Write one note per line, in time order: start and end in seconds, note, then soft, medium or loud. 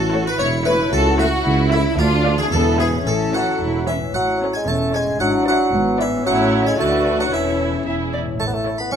0.00 0.28 A1 medium
0.00 0.29 A1 medium
0.00 0.86 A2 medium
0.00 1.94 C#4 soft
0.00 0.78 E4 soft
0.00 0.36 F#4 medium
0.00 0.24 A4 medium
0.00 0.83 A4 soft
0.13 0.33 A3 medium
0.13 0.33 E4 medium
0.13 0.33 C#5 medium
0.27 0.39 B4 medium
0.27 0.41 B4 medium
0.39 0.81 E1 medium
0.39 0.82 E1 medium
0.39 0.93 E4 medium
0.39 0.47 C#5 medium
0.39 0.64 C#5 medium
0.65 0.86 A3 medium
0.65 0.86 E4 medium
0.65 0.90 B4 medium
0.65 0.93 B4 medium
0.65 0.86 C#5 medium
0.75 1.92 C#3 medium
0.80 1.95 E4 medium
0.84 1.93 A4 soft
0.92 1.34 C#2 medium
0.92 1.35 C#2 medium
0.92 1.46 F#4 medium
0.92 1.18 A4 medium
0.92 1.19 A4 medium
1.19 1.40 A3 medium
1.19 1.40 E4 medium
1.19 1.69 F#4 medium
1.19 1.72 F#4 medium
1.19 1.39 E5 medium
1.46 1.88 C#2 medium
1.46 1.98 E4 medium
1.72 1.92 A3 medium
1.72 1.97 E4 medium
1.72 1.92 E4 medium
1.72 2.00 E4 medium
1.72 1.92 E5 medium
1.81 2.45 D3 medium
1.86 2.48 D4 medium
1.86 2.50 F4 medium
1.94 2.40 D2 medium
1.94 2.52 D4 medium
1.94 2.52 A4 soft
1.99 2.41 D2 medium
1.99 2.36 F4 medium
1.99 2.38 F4 medium
2.25 2.45 A3 medium
2.25 2.45 F4 medium
2.25 2.45 D5 medium
2.35 2.99 E3 medium
2.35 2.51 G#4 medium
2.39 3.01 B3 soft
2.39 2.46 G#4 medium
2.43 2.96 E4 soft
2.48 2.94 E2 medium
2.48 2.77 A4 medium
2.48 3.01 E5 soft
2.52 2.95 E1 medium
2.52 3.05 B3 medium
2.52 2.79 A4 medium
2.79 2.99 E3 medium
2.79 2.99 E4 medium
2.79 2.88 G#4 medium
2.79 3.04 G#4 medium
2.79 2.99 B4 medium
2.88 3.96 A2 soft
2.93 4.00 C#4 soft
2.98 4.05 E4 soft
3.02 3.48 A1 medium
3.02 3.54 C#4 soft
3.02 4.10 E5 soft
3.07 3.57 A4 medium
3.07 3.59 A4 medium
3.33 3.53 E3 soft
3.33 3.90 F#3 medium
3.33 3.53 E4 soft
3.33 3.53 C#5 medium
3.33 3.84 F#5 medium
3.60 4.02 E1 medium
3.60 4.03 E1 medium
3.60 3.85 E4 medium
3.87 4.07 E3 soft
3.87 4.14 E3 soft
3.87 3.95 C#4 medium
3.87 4.07 E4 soft
3.87 4.07 C#5 soft
3.87 4.12 E5 soft
3.97 5.14 A2 soft
4.02 5.16 C#4 soft
4.06 5.12 E4 soft
4.11 4.56 A1 medium
4.11 4.56 A2 medium
4.11 4.53 F#3 medium
4.11 5.16 E5 soft
4.11 4.51 F#5 medium
4.41 4.60 C#4 soft
4.41 4.61 A4 soft
4.41 4.61 C#5 medium
4.53 4.69 G#3 medium
4.53 4.66 G#5 medium
4.66 5.09 E1 medium
4.66 5.09 E2 medium
4.66 4.95 A3 medium
4.66 5.16 C#4 soft
4.66 4.92 A5 medium
4.93 5.20 G#3 medium
4.93 5.14 C#4 medium
4.93 5.13 A4 medium
4.93 5.13 C#5 medium
4.93 5.19 G#5 medium
5.04 6.19 G#2 medium
5.08 6.22 D4 soft
5.13 6.16 E4 soft
5.17 5.62 G#1 medium
5.17 5.62 G#2 medium
5.17 5.46 F#3 medium
5.17 5.72 D4 medium
5.17 6.20 E5 soft
5.17 5.45 F#5 medium
5.46 6.01 F#3 medium
5.46 5.67 E4 medium
5.46 5.67 B4 medium
5.46 5.66 D5 medium
5.46 5.96 F#5 medium
5.72 6.14 G#1 medium
5.72 6.15 G#2 medium
5.72 6.25 B3 medium
5.99 6.25 E3 medium
5.99 6.18 E4 medium
5.99 6.20 B4 medium
5.99 6.19 D5 medium
5.99 6.25 E5 medium
6.08 6.72 A2 medium
6.13 6.74 C#4 soft
6.17 6.76 E4 soft
6.21 6.75 A1 medium
6.21 6.75 E4 medium
6.21 6.79 E5 soft
6.26 6.75 A2 medium
6.26 6.68 F#3 medium
6.26 6.79 C#4 medium
6.26 6.76 A4 medium
6.26 6.75 C#5 medium
6.26 6.63 F#5 medium
6.61 7.25 D3 soft
6.65 6.78 G#3 medium
6.65 7.27 D4 soft
6.65 6.78 G#5 medium
6.69 7.29 F#4 soft
6.74 7.30 D4 medium
6.74 7.32 B4 soft
6.78 7.31 D2 soft
6.78 7.31 D2 medium
6.78 7.18 A3 medium
6.78 7.32 F#4 medium
6.78 7.33 B4 medium
6.78 7.32 D5 medium
6.78 7.17 A5 medium
7.13 7.66 E3 soft
7.18 7.26 F#3 soft
7.18 7.80 C#4 soft
7.18 7.32 F#5 soft
7.22 7.75 E4 soft
7.26 7.85 A4 soft
7.31 7.84 E1 soft
7.31 7.84 E2 soft
7.31 7.85 E3 medium
7.31 8.10 C#4 soft
7.31 7.84 E4 soft
7.31 7.85 A4 soft
7.31 7.84 C#5 soft
7.31 7.83 E5 soft
7.67 8.32 E3 soft
7.72 8.34 B3 soft
7.76 8.29 E4 soft
7.81 8.39 G#4 soft
7.85 8.19 E1 soft
7.85 8.18 E2 soft
7.85 8.18 E4 soft
7.85 8.19 G#4 soft
7.85 7.94 E5 soft
8.13 8.21 D5 soft
8.21 8.96 A2 soft
8.26 8.96 C#4 soft
8.30 8.96 E4 soft
8.35 8.81 A1 soft
8.35 8.96 A4 soft
8.40 8.81 A2 medium
8.40 8.49 A3 medium
8.40 8.77 A5 medium
8.47 8.55 B3 medium
8.53 8.79 A3 medium
8.66 8.86 E4 soft
8.66 8.86 A4 soft
8.66 8.86 C#5 soft
8.78 8.91 B3 medium
8.78 8.91 B5 soft
8.91 8.96 C#4 medium
8.91 8.96 E4 medium
8.91 8.96 C#6 medium